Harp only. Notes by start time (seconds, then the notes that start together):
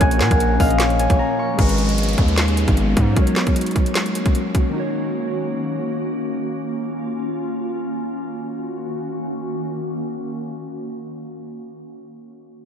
Already playing: F#5 A#5
0.01 G#5
0.21 F#5
0.60 F5
1.00 G#5
1.19 A#5
1.39 C#6